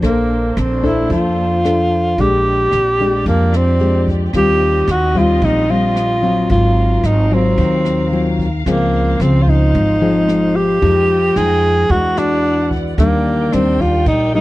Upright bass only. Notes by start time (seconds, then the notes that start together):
0.02 A#1
0.57 A#1
1.10 F2
2.18 A#1
2.73 A#1
3.26 F2
4.33 D#2
4.88 D#2
5.42 A#1
6.50 G#1
7.04 G#1
7.58 D#2
8.66 C#2
9.20 C#2
9.75 G#1
10.82 F2
11.36 F2
11.89 E2
12.98 D#2
13.53 D#2
14.06 A#1